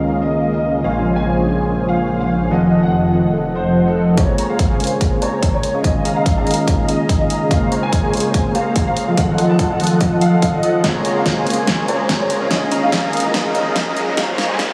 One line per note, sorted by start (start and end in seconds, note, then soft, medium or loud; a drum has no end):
0.00 0.82 C#2 medium
0.00 0.82 D#3 medium
0.00 0.86 D#3 medium
0.00 0.83 G#3 medium
0.00 0.84 A#3 medium
0.00 2.47 A#3 medium
0.00 0.82 C#4 medium
0.00 0.86 C#4 medium
0.00 0.82 F4 medium
0.00 0.86 F4 medium
0.00 0.82 G#4 medium
0.00 0.82 A#4 medium
0.00 0.83 A#4 medium
0.00 0.82 D#5 medium
0.00 0.82 F5 medium
0.22 0.50 D#5 medium
0.53 0.81 D#5 medium
0.82 2.49 A#1 medium
0.82 1.43 C#3 medium
0.82 2.49 C#3 medium
0.82 1.44 G#3 medium
0.82 2.48 A#3 medium
0.82 1.44 A#3 medium
0.82 2.49 F4 medium
0.82 1.45 F4 medium
0.82 2.49 G#4 medium
0.82 2.49 C5 medium
0.82 2.48 C#5 medium
0.82 1.13 F5 medium
0.82 2.48 G#5 medium
1.16 1.53 G#5 medium
1.45 2.48 C#3 medium
1.45 2.48 G#3 medium
1.45 2.49 A#3 medium
1.45 2.50 A#4 medium
1.89 2.17 F5 medium
2.20 2.48 F5 medium
2.49 4.16 F1 medium
2.49 3.10 D#3 medium
2.49 4.16 D#3 medium
2.49 4.15 F3 medium
2.49 3.11 A3 medium
2.49 4.16 A3 medium
2.49 3.12 C4 medium
2.49 4.15 F4 medium
2.49 4.15 A4 medium
2.49 4.15 D#5 medium
2.49 2.80 D#5 medium
2.49 4.15 F#5 medium
2.83 3.20 F#5 medium
3.12 4.14 D#3 medium
3.12 4.15 A3 medium
3.12 4.16 C4 medium
3.12 4.16 A4 medium
3.55 3.84 C5 medium
3.87 4.15 A4 medium
4.16 4.77 C#3 medium
4.16 5.82 C#3 medium
4.16 4.77 G#3 medium
4.16 9.13 A#3 medium
4.16 4.36 A#3 medium
4.16 4.78 A#3 medium
4.16 4.78 C4 medium
4.16 5.82 G#4 medium
4.16 4.36 G#4 medium
4.16 4.36 C5 medium
4.16 4.46 C#5 medium
4.16 4.36 C#5 medium
4.16 4.36 A#5 medium
4.16 kick medium
4.16 closed hi-hat medium
4.20 4.79 F4 medium
4.38 4.68 A#3 medium
4.38 4.68 G#4 medium
4.38 4.68 C5 medium
4.38 4.68 C#5 medium
4.38 4.68 A#5 medium
4.38 closed hi-hat medium
4.50 4.87 F5 medium
4.59 kick medium
4.59 closed hi-hat medium
4.70 5.19 A#3 medium
4.70 5.19 G#4 medium
4.70 5.19 C5 medium
4.70 5.19 C#5 medium
4.70 5.19 G#5 loud
4.78 5.81 C#3 medium
4.78 5.81 G#3 medium
4.78 5.82 A#3 medium
4.78 closed hi-hat soft
4.82 5.83 A#4 medium
4.82 closed hi-hat medium
4.87 closed hi-hat medium
5.01 kick medium
5.01 closed hi-hat medium
5.22 5.72 A#3 medium
5.22 5.72 G#4 medium
5.22 5.72 C5 medium
5.22 5.72 C#5 medium
5.22 5.50 C#5 medium
5.22 5.72 A#5 loud
5.22 closed hi-hat medium
5.43 kick medium
5.43 closed hi-hat medium
5.54 5.81 C#5 medium
5.63 closed hi-hat medium
5.74 6.03 C#4 medium
5.74 6.03 G#4 medium
5.74 6.03 D#5 medium
5.74 6.03 F5 medium
5.74 6.03 G#5 medium
5.82 9.14 C#3 medium
5.82 6.43 D#3 medium
5.82 6.44 G#3 medium
5.82 6.44 A#3 medium
5.82 6.45 C#4 medium
5.82 7.49 D#4 medium
5.82 7.49 F4 medium
5.82 6.13 D#5 medium
5.82 kick medium
5.82 closed hi-hat medium
5.86 6.45 F4 medium
6.05 6.34 C#4 medium
6.05 6.34 G#4 medium
6.05 6.34 D#5 medium
6.05 6.34 F5 medium
6.05 6.34 A#5 loud
6.05 closed hi-hat medium
6.16 6.53 F5 medium
6.26 kick medium
6.26 closed hi-hat medium
6.37 7.28 C#4 medium
6.37 7.28 G#4 medium
6.37 7.28 D#5 medium
6.37 7.28 F5 medium
6.37 7.28 A#5 loud
6.45 7.48 D#3 medium
6.45 7.48 G#3 medium
6.45 7.49 A#3 medium
6.45 7.49 C#4 medium
6.45 closed hi-hat soft
6.49 7.50 A#4 medium
6.49 closed hi-hat medium
6.54 closed hi-hat medium
6.68 kick medium
6.68 closed hi-hat medium
6.88 7.17 D#5 medium
6.88 closed hi-hat medium
7.09 kick medium
7.09 closed hi-hat medium
7.20 7.48 D#5 medium
7.30 7.49 C#4 medium
7.30 7.49 G#4 medium
7.30 7.49 D#5 medium
7.30 7.49 F5 medium
7.30 7.49 A#5 medium
7.30 closed hi-hat medium
7.49 8.10 C#3 medium
7.49 8.11 G#3 medium
7.49 7.69 A#3 medium
7.49 8.11 A#3 medium
7.49 8.12 C4 medium
7.49 8.12 F4 medium
7.49 7.69 G#4 medium
7.49 9.16 G#4 medium
7.49 7.69 C5 medium
7.49 7.69 C#5 medium
7.49 7.80 F5 loud
7.49 7.69 A#5 loud
7.49 kick medium
7.49 closed hi-hat medium
7.72 8.01 A#3 medium
7.72 8.01 G#4 medium
7.72 8.01 C5 medium
7.72 8.01 C#5 medium
7.72 8.01 A#5 loud
7.72 closed hi-hat medium
7.83 8.20 G#5 medium
7.92 kick loud
7.92 closed hi-hat medium
8.03 8.53 A#3 medium
8.03 8.53 G#4 medium
8.03 8.53 C5 medium
8.03 8.53 C#5 medium
8.03 8.53 G#5 loud
8.11 9.14 C#3 medium
8.11 9.15 G#3 medium
8.11 9.15 A#3 medium
8.11 9.16 A#4 medium
8.11 closed hi-hat soft
8.17 closed hi-hat medium
8.20 closed hi-hat medium
8.34 kick medium
8.34 closed hi-hat medium
8.55 9.05 A#3 medium
8.55 9.05 G#4 medium
8.55 9.05 C5 medium
8.55 9.05 C#5 medium
8.55 8.83 F5 medium
8.55 9.05 A#5 loud
8.55 closed hi-hat medium
8.76 kick loud
8.76 closed hi-hat medium
8.87 9.15 F5 medium
8.97 closed hi-hat medium
9.08 9.36 F3 medium
9.08 9.36 F4 medium
9.08 9.36 A4 medium
9.08 9.36 D#5 medium
9.08 9.36 F5 medium
9.16 9.77 D#3 medium
9.16 10.82 D#3 medium
9.16 9.77 F#3 medium
9.16 9.78 A3 medium
9.16 9.78 C4 medium
9.16 9.79 F4 medium
9.16 10.83 A4 medium
9.16 9.46 F#5 loud
9.16 kick medium
9.16 closed hi-hat medium
9.38 9.68 F3 medium
9.38 9.67 F4 medium
9.38 9.68 A4 medium
9.38 9.68 D#5 medium
9.38 9.68 F#5 loud
9.38 closed hi-hat medium
9.50 9.87 A5 medium
9.59 kick loud
9.59 closed hi-hat medium
9.70 10.61 F3 medium
9.70 10.61 F4 medium
9.70 10.61 A4 medium
9.70 10.61 D#5 medium
9.70 10.61 F#5 loud
9.78 10.81 D#3 medium
9.78 10.82 A3 medium
9.78 10.82 C4 medium
9.78 closed hi-hat soft
9.82 10.83 A4 medium
9.82 closed hi-hat medium
9.87 closed hi-hat medium
10.01 kick medium
10.01 closed hi-hat medium
10.21 10.50 F5 medium
10.21 closed hi-hat medium
10.42 kick loud
10.42 closed hi-hat medium
10.53 10.81 D#5 medium
10.63 10.82 F3 medium
10.63 10.82 F4 medium
10.63 10.82 A4 medium
10.63 10.82 D#5 medium
10.63 10.82 F#5 medium
10.63 closed hi-hat medium
10.82 11.43 C#3 medium
10.82 12.49 C#3 medium
10.82 11.44 G#3 medium
10.82 11.03 A#3 medium
10.82 11.44 A#3 medium
10.82 11.45 C4 medium
10.82 12.49 G#4 medium
10.82 11.03 G#4 medium
10.82 14.73 A#4 medium
10.82 11.03 C5 medium
10.82 11.03 C#5 medium
10.82 11.13 C#5 loud
10.82 11.03 A#5 loud
10.82 kick medium
10.82 snare soft
10.82 closed hi-hat medium
10.82 riser medium
10.86 11.45 F4 medium
11.05 11.34 A#3 medium
11.05 11.34 G#4 medium
11.05 11.34 C5 medium
11.05 11.34 C#5 medium
11.05 11.34 A#5 loud
11.05 closed hi-hat medium
11.16 11.54 F5 medium
11.26 kick loud
11.26 snare soft
11.26 closed hi-hat medium
11.37 11.86 A#3 medium
11.37 11.86 G#4 medium
11.37 11.86 C5 medium
11.37 11.86 C#5 medium
11.37 11.86 G#5 loud
11.45 12.48 C#3 medium
11.45 12.48 G#3 medium
11.45 12.49 A#3 medium
11.45 12.50 A#4 medium
11.45 closed hi-hat soft
11.50 closed hi-hat medium
11.54 closed hi-hat medium
11.67 kick medium
11.67 snare medium
11.67 closed hi-hat medium
11.88 12.38 A#3 medium
11.88 12.38 G#4 medium
11.88 12.38 C5 medium
11.88 12.38 C#5 medium
11.88 12.17 C#5 medium
11.88 12.38 A#5 loud
11.88 closed hi-hat medium
12.09 kick medium
12.09 snare medium
12.09 closed hi-hat medium
12.20 12.48 C#5 medium
12.30 closed hi-hat medium
12.41 12.69 C#4 medium
12.41 12.69 G#4 medium
12.41 12.69 D#5 medium
12.41 12.69 F5 medium
12.41 12.69 G#5 medium
12.49 13.10 D#3 medium
12.49 14.16 D#3 medium
12.49 13.10 G#3 medium
12.49 13.11 A#3 medium
12.49 14.16 C#4 medium
12.49 13.11 C#4 medium
12.49 14.16 F4 medium
12.49 12.79 D#5 loud
12.49 kick loud
12.49 snare medium
12.49 closed hi-hat medium
12.53 13.12 F4 medium
12.72 13.01 C#4 medium
12.72 13.01 G#4 medium
12.72 13.01 D#5 medium
12.72 13.01 F5 medium
12.72 13.01 A#5 loud
12.72 closed hi-hat medium
12.83 13.20 F5 medium
12.92 kick loud
12.92 snare medium
12.92 closed hi-hat medium
13.03 13.94 C#4 medium
13.03 13.94 G#4 medium
13.03 13.94 D#5 medium
13.03 13.94 F5 medium
13.03 13.94 A#5 loud
13.11 14.14 D#3 medium
13.11 14.15 G#3 medium
13.11 14.15 A#3 medium
13.11 14.16 C#4 medium
13.11 14.16 A#4 medium
13.11 closed hi-hat soft
13.17 closed hi-hat medium
13.20 closed hi-hat medium
13.34 kick medium
13.34 snare medium
13.34 closed hi-hat medium
13.55 13.84 D#5 medium
13.55 closed hi-hat medium
13.76 kick loud
13.76 snare medium
13.76 closed hi-hat medium
13.87 14.15 D#5 medium
13.96 14.15 C#4 medium
13.96 14.15 G#4 medium
13.96 14.15 D#5 medium
13.96 14.15 F5 medium
13.96 14.15 A#5 medium
13.96 closed hi-hat medium
14.15 14.73 C#3 medium
14.15 14.73 G#3 medium
14.15 14.36 A#3 medium
14.15 14.73 A#3 medium
14.15 14.73 C4 medium
14.15 14.73 F4 medium
14.15 14.36 G#4 medium
14.15 14.73 G#4 medium
14.15 14.36 C5 medium
14.15 14.36 C#5 medium
14.15 14.46 F5 loud
14.15 14.36 A#5 loud
14.15 kick medium
14.15 snare medium
14.15 closed hi-hat medium
14.38 14.68 A#3 medium
14.38 14.68 G#4 medium
14.38 14.68 C5 medium
14.38 14.68 C#5 medium
14.38 14.68 A#5 medium
14.38 snare medium
14.38 closed hi-hat medium
14.49 14.73 G#5 loud
14.59 kick loud
14.59 snare medium
14.59 closed hi-hat medium